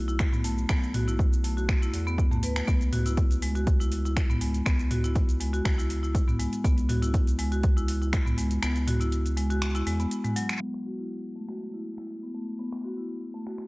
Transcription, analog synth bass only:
Already playing: B1
0.69 B1
1.93 E2
2.43 D2
2.68 C#2
4.66 C#2
5.65 C#2
6.65 C#2
8.63 C#2
9.87 E2

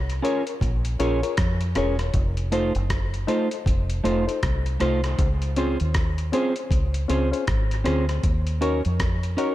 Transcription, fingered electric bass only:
Already playing: C2
0.62 A#1
1.00 A#1
1.38 F2
1.77 E1
2.14 F1
2.76 F#1
3.66 F1
4.05 F1
4.43 C2
4.82 C2
5.19 C#2
5.81 D#2
6.71 C#2
7.10 C#2
7.48 G#1
7.86 D2
8.24 D#2
8.86 F2

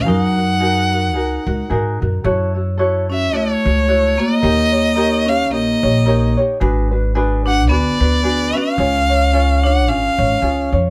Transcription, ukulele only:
0.05 D#4 F#4 G#4 A#4
0.36 D#4 F#4 A#4
0.60 D#4 F#4 G#4 A#4
0.91 D#4 F#4 A#4
1.14 D#4 F#4 G#4 A#4
1.45 D#4 F#4 A#4
1.70 D#4 F#4 G#4 A#4
2.00 D#4 F#4 A#4
2.24 E4 F#4 A4 C#5
2.55 E4 F#4 C#5
2.78 E4 F#4 A4 C#5
3.09 E4 F#4 C#5
3.32 E4 F#4 A4 C#5
3.64 E4 F#4 C#5
3.88 E4 F#4 A4 C#5
4.19 E4 F#4
4.41 D#4 G4 A#4 C#5
4.72 D#4 G4 C#5
4.96 D#4 G4 A#4 C#5
5.27 D#4 G4 C#5
5.50 D#4 G4 A#4 C#5
5.83 D#4 G4 C#5
6.06 D#4 G4 A#4 C#5
6.37 D#4 G4 C#5
6.60 D4 F#4 G#4 B4
6.91 D4 F#4 B4
7.15 D4 F#4 G#4 B4
7.45 D4 F#4 B4
7.69 D4 F#4 G#4 B4
8.01 D4 F#4 B4
8.23 D4 F#4 G#4 B4
8.55 D4 F#4 B4
8.78 C#4 F4 G#4 C#5
9.10 C#4 F4 C#5
9.33 C#4 F4 G#4 C#5
9.64 C#4 F4 C#5
9.88 C#4 F4 G#4 C#5
10.19 C#4 F4 C#5
10.42 C#4 F4 G#4 C#5
10.73 C#4 F4 C#5

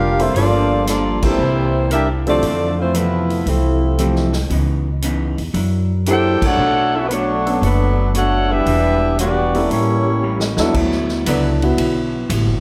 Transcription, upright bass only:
Already playing: F1
0.34 G1
1.38 C2
2.42 F2
3.46 C2
4.50 C#2
5.38 E2
5.54 F#2
6.42 F#2
6.57 B1
7.62 F#1
8.66 E1
9.70 A1
10.58 D#2
10.74 D2
11.26 C#2
11.77 B1
12.30 A1
12.47 F#1

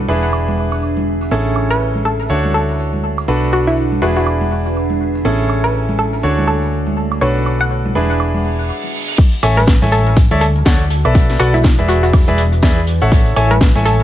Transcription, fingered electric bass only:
0.08 E1
1.31 A1
2.30 D2
3.28 B1
4.02 E1
5.25 A1
6.23 D2
7.22 B1
7.95 E1
9.43 A1
9.82 A1
10.31 D2
11.05 B1
11.40 B1
11.79 E1
12.28 E1
12.63 E2
13.02 A1
13.36 A1
13.75 A1

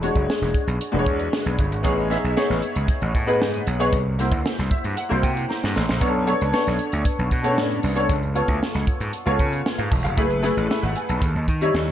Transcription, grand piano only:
0.02 G#3 D4 F#4 C#5
0.92 G#3 D4 F#4 B4
0.99 C#5
1.83 B3 D#4 G#4 C#5
2.09 B3 D#4 G#4 E5
2.36 B3 D#4 G#4 C#5
3.27 B3 D#4 G#4 B4
3.79 B3 D#4 G#4 C#5
4.18 A#3 E4 F#4 C5
4.71 E5
4.96 F#5
5.09 A#3 E4 F#4 C5
5.22 G5
5.49 A#5
5.75 C6
6.01 B3 D4 A4 C#5
6.26 B3 D4 A4 C#5
6.52 B3 D4 A4 C#5
7.43 B3 C#4 A4 C#5
7.50 D4
7.95 B3 D4 A4 C#5
8.35 B3 F4 A4 C#5
9.26 B3 F4 A4 C#5
9.78 F5
9.91 A5
10.04 F5
10.17 A3 E4 G#4 B4
10.42 A3 E4 G#4 B4
10.69 E5
10.82 F#5
10.96 G#5
11.09 A5
11.61 G3 D#4 E4 C#5

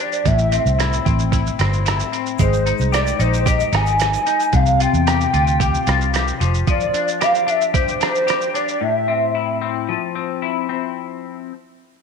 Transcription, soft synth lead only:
0.00 D5
0.26 E5
2.41 C5
2.94 D5
3.21 C5
3.47 D#5
3.74 G#5
4.54 F5
4.80 G5
6.70 D5
7.23 F5
7.49 E5
7.75 C5
8.01 C5
8.55 D5
8.83 E5

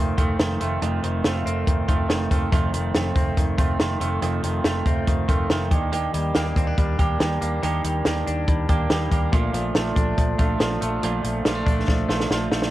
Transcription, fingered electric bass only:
Already playing: F1
0.18 F1
0.39 F1
0.61 F1
0.82 F1
1.03 F1
1.25 F1
1.46 F1
1.68 F1
1.89 F1
2.09 F1
2.31 F1
2.52 F1
2.74 F1
2.95 F1
3.16 F1
3.37 F1
3.58 F1
3.79 F1
4.00 F1
4.22 F1
4.43 F1
4.64 F1
4.86 F1
5.07 F1
5.29 F1
5.50 F1
5.71 D#2
6.14 D#2
6.35 D#2
6.56 D#2
6.78 D#2
6.99 D#2
7.20 D#2
7.42 D#2
7.63 D#2
7.84 D#2
8.05 D#2
8.27 D#2
8.48 D#2
8.69 D#2
8.90 D#2
9.11 D#2
9.33 A#1
9.54 A#1
9.75 A#1
9.96 A#1
10.18 A#1
10.39 A#1
10.60 A#1
10.82 A#1
11.03 A#1
11.24 A#1
11.45 A#1
11.67 A#1
11.88 A#1
12.09 A#1
12.30 A#1
12.51 A#1

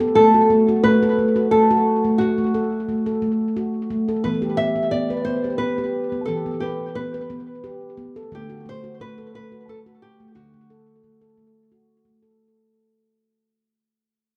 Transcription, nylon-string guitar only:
0.15 A4
0.84 B4
1.51 A4
2.18 F#4
4.24 B4
4.57 E5
4.91 D5
5.25 C5
5.58 B4
6.25 A4
6.60 G4
6.95 B4
8.35 G4
8.69 C5
9.01 B4
9.35 B4
9.69 A4
10.02 G4
10.35 F#4

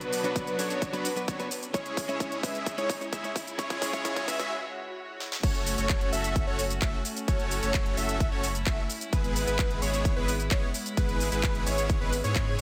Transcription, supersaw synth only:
Already playing: F#3 B3 D4 F#4 B4
0.24 F#3 B3 D4 F#4 B4
0.59 F#3 B3 D4 F#4 C#5
0.93 F#3 B3 D4 F#4 B4
1.28 F#3 B3 D4 F#4 C#5
1.74 G#3 C#4 E4 G#4 C#5
2.09 G#3 C#4 E4 G#4 C#5
2.43 G#3 C#4 E4 G#4 E5
2.78 G#3 C#4 E4 G#4 C#5
3.13 G#3 C#4 E4 G#4 E5
3.59 G#3 C#4 E4 G#4 C#5
3.93 G#3 C#4 E4 G#4 C#5
4.28 G#3 C#4 E4 G#4 E5
5.43 A3 C#4 F#4 A4 C#5
5.78 A3 C#4 F#4 A4 C#5
6.13 A3 C#4 F#4 A4 E5
6.47 A3 C#4 F#4 A4 C#5
6.82 A3 C#4 F#4 A4 E5
7.28 A3 C#4 F#4 A4 C#5
7.63 A3 C#4 F#4 A4 C#5
7.97 A3 C#4 F#4 A4 E5
8.32 A3 C#4 F#4 A4 C#5
8.66 A3 C#4 F#4 A4 E5
9.13 G#3 B3 E4 G#4 B4
9.47 G#3 B3 E4 G#4 B4
9.82 G#3 B3 E4 G#4 C#5
10.16 G#3 B3 E4 G#4 B4
10.51 G#3 B3 E4 G#4 C#5
10.97 G#3 B3 E4 G#4 B4
11.32 G#3 B3 E4 G#4 B4
11.66 G#3 B3 E4 G#4 C#5
12.01 G#3 B3 E4 G#4 B4
12.24 G#3 B3 E4 G#4 C#5

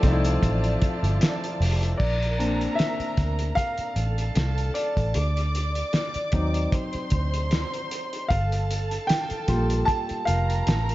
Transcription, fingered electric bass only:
0.03 C2
0.43 A1
1.03 G1
1.60 F1
2.00 A#1
3.00 muted fingered electric bass stroke
3.18 D2
3.79 muted fingered electric bass stroke
3.96 A1
4.36 C2
4.97 A1
5.16 D2
6.16 muted fingered electric bass stroke
6.33 D#2
6.95 muted fingered electric bass stroke
7.12 D2
8.31 G1
9.31 muted fingered electric bass stroke
9.49 A#1
10.11 muted fingered electric bass stroke
10.28 F1
10.67 A1

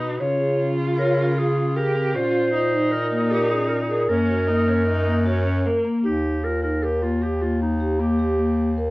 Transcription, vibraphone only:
0.01 F#4
0.21 C#4
0.40 G#4
0.60 C#4
0.98 C#5
1.17 C#4
1.37 G#4
1.56 C#4
1.75 G#4
1.95 C4
2.14 C#4
2.53 F4
2.73 D#4
2.92 A#4
3.11 A#3
3.31 A#4
3.51 C#4
3.90 A#4
4.09 A#3
4.29 F#4
4.48 A#3
4.87 A#4
5.06 A#3
5.26 F#4
5.45 C#4
5.65 A#4
5.84 A#3
6.04 D#4
6.43 F4
6.62 D#4
6.82 A#4
7.01 A#3
7.22 G4
7.41 A#3
7.80 G4
8.00 A#3
8.19 G4
8.39 A#3
8.77 A#4

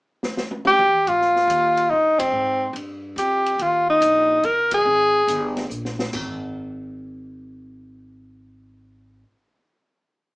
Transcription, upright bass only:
1.06 G#2
1.47 D#2
1.90 G2
2.32 G#2
2.73 G2
3.16 F2
3.58 D#2
4.00 A#1
4.43 C2
4.85 G#1
5.27 G1
5.70 A#1
6.13 G#1

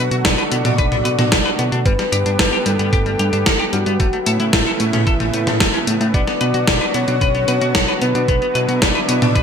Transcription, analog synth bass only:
0.11 B2
0.25 B1
0.52 B2
0.65 B2
0.78 B1
1.05 B2
1.19 B2
1.32 B1
1.59 B2
1.72 B2
1.86 G1
2.12 G2
2.26 G2
2.39 G1
2.66 G2
2.79 G2
2.93 G1
3.19 G2
3.33 G2
3.46 G1
3.73 G2
3.86 G2
4.00 A1
4.26 A2
4.40 A2
4.53 A1
4.80 A2
4.94 A2
5.07 A1
5.34 A2
5.47 A2
5.60 A1
5.87 A2
6.01 A2
6.14 B1
6.41 B2
6.54 B2
6.68 B1
6.95 B2
7.08 B2
7.21 B1
7.48 B2
7.61 B2
7.75 B1
8.02 B2
8.15 B2
8.28 B1
8.55 B2
8.68 B2
8.82 B1
9.09 B2
9.22 B2
9.35 B1

